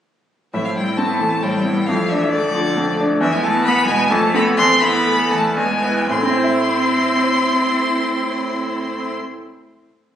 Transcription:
0.54 grand piano A2, cello E3, viola C4, violin E5
0.65 cello F3, violin F5
0.76 cello G3, grand piano E4, violin G5
0.97 cello A3, viola B3, grand piano C4, violin A5
1.20 grand piano E3, viola A3
1.42 grand piano A2, cello G3, viola C4, violin G5
1.66 viola B3, grand piano E4
1.86 grand piano F2, viola A3, violin F5
1.90 cello F3
2.09 cello E3, grand piano D4, violin E5
2.31 cello D3, grand piano A3, violin D5
2.55 grand piano F3
2.77 grand piano F2, viola A3
2.99 grand piano D4
3.21 grand piano E2, cello E3, viola B3, violin E5
3.33 cello G#3, violin G#5
3.43 cello A3, grand piano E4, violin A5
3.64 grand piano B3, cello B3, violin B5
3.87 grand piano B2, cello G#3, violin G#5
4.10 grand piano F2, cello A3, viola A3, violin A5
4.34 cello B3, grand piano C4 A4, violin B5
4.57 grand piano E2, cello C4, violin C6
4.80 cello B3, grand piano E4, violin B5
5.06 grand piano A3, viola A3
5.31 grand piano E3, cello A3, violin A5
5.56 grand piano E2, cello G#3, viola B3, violin G#5
5.83 grand piano E4 B4
6.09 grand piano A2, cello C4, viola E4, violin C6
6.16 grand piano A3
6.23 grand piano C4
6.30 grand piano E4
6.37 grand piano C5
6.44 grand piano E5

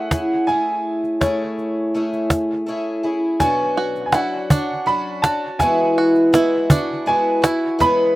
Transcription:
Already playing: twelve-string acoustic guitar A3 C#4 E4, upright piano F#5
0.11 twelve-string acoustic guitar C#4 E4 G#4, cajon bass, cajon slap
0.47 twelve-string acoustic guitar A3 C#4 E4 G#4, upright piano G#5
1.04 cajon slap
1.21 twelve-string acoustic guitar A3 C#4 E4 G#4, upright piano C#5, cajon bass, cajon slap
1.58 cajon slap
1.94 twelve-string acoustic guitar A3 C#4 E4 G#4
2.13 cajon slap
2.30 cajon bass, cajon slap
2.66 twelve-string acoustic guitar A3 C#4 E4 G#4
3.03 twelve-string acoustic guitar C#4 E4 G#4
3.40 twelve-string acoustic guitar B2 F#3 C#4 D4 F#4, upright piano G#5, cajon bass, cajon slap
3.77 five-string banjo F#4
3.95 cajon slap
4.06 upright piano G#5
4.12 twelve-string acoustic guitar F#3 C#4 D4 F#4, five-string banjo E4, upright piano F#5, cajon slap
4.50 twelve-string acoustic guitar C#4 D4 F#4, five-string banjo D4, cajon bass
4.86 twelve-string acoustic guitar F#3 C#4 D4 F#4, upright piano B5
5.22 twelve-string acoustic guitar C#4 F#4, five-string banjo F#4, upright piano A5, cajon slap
5.26 twelve-string acoustic guitar D4
5.59 twelve-string acoustic guitar E3 G#3 B3 E4 F#4, upright piano G#5, cajon bass, cajon slap
5.98 five-string banjo F#4
6.15 cajon slap
6.33 twelve-string acoustic guitar G#3 B3 E4 F#4, five-string banjo E4, cajon slap
6.70 twelve-string acoustic guitar B3 E4 F#4, five-string banjo D4, cajon bass
7.06 twelve-string acoustic guitar G#3 B3 E4 F#4, upright piano G#5
7.42 twelve-string acoustic guitar B3 E4 F#4, five-string banjo E4, cajon slap
7.79 twelve-string acoustic guitar E3 G#3 B3 C#4 G#4, upright piano B5, cajon bass, cajon slap

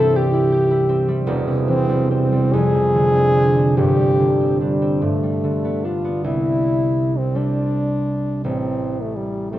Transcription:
Already playing: harp C2 G2 E3 G3 C4 G4, french horn A4
0.00 harp E4
0.16 harp G4, french horn G4
0.33 harp E4
0.52 harp G4
0.70 harp E4
0.89 harp C4
1.08 harp G3
1.27 harp E1 E2
1.48 harp C3
1.68 harp E3, french horn C4
1.89 harp G3
2.10 harp C4, french horn C4
2.32 harp G3
2.53 harp F2, french horn G#4
2.74 harp C3
2.94 harp D3
3.16 harp C4
3.35 harp D4
3.57 harp C4
3.77 harp G1 G2, french horn G4
3.99 harp G3
4.19 harp D3
4.41 harp C4
4.61 french horn G3, harp D4
4.82 harp C4
5.02 harp G2, french horn A3
5.23 harp G3
5.44 harp D3
5.64 harp B3
5.85 harp D4, french horn F4
6.04 harp B3
6.24 harp C2, french horn E4
7.18 french horn C4
7.35 harp G3 C4, french horn D4
8.44 harp A1, french horn C4
9.01 french horn A3
9.16 french horn G3
9.51 harp G3 C4, french horn A3

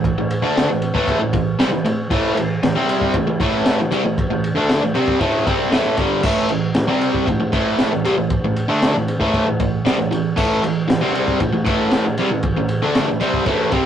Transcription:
Already playing: overdriven electric guitar A2 E3
0.04 kick, ride
0.18 overdriven electric guitar A2 E3
0.30 ride
0.42 overdriven electric guitar D3 A3 D4
0.57 snare, ride
0.69 overdriven electric guitar A2 E3
0.82 ride
0.94 overdriven electric guitar A2 E3 A3, kick
1.08 kick, ride
1.20 overdriven electric guitar A2 E3
1.33 overdriven electric guitar A2 E3, kick, ride
1.59 overdriven electric guitar C3 G3, snare, ride
1.72 overdriven electric guitar A2 E3
1.85 overdriven electric guitar A2 E3, ride
2.10 overdriven electric guitar A2 E3 A3, kick, crash
2.36 overdriven electric guitar A2 E3, ride
2.63 overdriven electric guitar A2 E3, snare, ride
2.75 overdriven electric guitar C3 G3 C4
2.89 ride
3.01 kick
3.14 overdriven electric guitar A2 E3, kick, ride
3.27 overdriven electric guitar A2 E3
3.40 overdriven electric guitar A2 E3 A3, kick, ride
3.66 snare, ride
3.80 overdriven electric guitar A2 E3
3.91 overdriven electric guitar C3 G3, ride
4.05 overdriven electric guitar A2 E3
4.18 kick, ride
4.30 overdriven electric guitar A2 E3
4.44 ride
4.55 overdriven electric guitar D3 A3 D4
4.69 snare, ride
4.82 overdriven electric guitar A2 E3
4.94 overdriven electric guitar C3 G3 C4, ride
5.08 kick
5.20 overdriven electric guitar A2 E3 A3, kick, ride
5.46 overdriven electric guitar C3 G3 C4, kick, ride
5.71 overdriven electric guitar A2 E3 A3, snare, ride
5.97 overdriven electric guitar G2 D3 G3, kick, ride
6.23 overdriven electric guitar A2 E3 A3, kick, crash
6.49 overdriven electric guitar A2 E3, ride
6.74 overdriven electric guitar A2 E3, snare, ride
6.87 overdriven electric guitar C3 G3 C4
7.01 ride
7.14 kick
7.27 overdriven electric guitar A2 E3, kick, ride
7.40 overdriven electric guitar A2 E3
7.52 overdriven electric guitar A2 E3 A3, kick, ride
7.78 snare, ride
7.92 overdriven electric guitar A2 E3
8.05 overdriven electric guitar C3 G3, ride
8.18 overdriven electric guitar A2 E3
8.30 kick, ride
8.45 overdriven electric guitar A2 E3
8.56 ride
8.68 overdriven electric guitar D3 A3 D4
8.82 snare, ride
8.95 overdriven electric guitar A2 E3
9.08 ride
9.20 overdriven electric guitar A2 E3 A3, kick
9.34 kick, ride
9.46 overdriven electric guitar A2 E3
9.60 overdriven electric guitar A2 E3, kick, ride
9.85 overdriven electric guitar C3 G3, snare, ride
9.99 overdriven electric guitar A2 E3
10.11 overdriven electric guitar A2 E3, ride
10.37 overdriven electric guitar A2 E3 A3, kick, crash
10.63 overdriven electric guitar A2 E3, ride
10.88 overdriven electric guitar A2 E3, snare, ride
11.01 overdriven electric guitar C3 G3 C4
11.15 ride
11.28 kick
11.40 overdriven electric guitar A2 E3, kick, ride
11.53 overdriven electric guitar A2 E3
11.65 overdriven electric guitar A2 E3 A3, kick, ride
11.91 snare, ride
12.04 overdriven electric guitar A2 E3
12.18 overdriven electric guitar C3 G3, ride
12.31 overdriven electric guitar A2 E3
12.43 kick, ride
12.57 overdriven electric guitar A2 E3
12.69 ride
12.82 overdriven electric guitar D3 A3 D4
12.95 snare, ride
13.08 overdriven electric guitar A2 E3
13.20 overdriven electric guitar C3 G3 C4, ride
13.34 kick
13.45 overdriven electric guitar A2 E3 A3, kick, ride
13.72 overdriven electric guitar C3 G3 C4, kick, ride

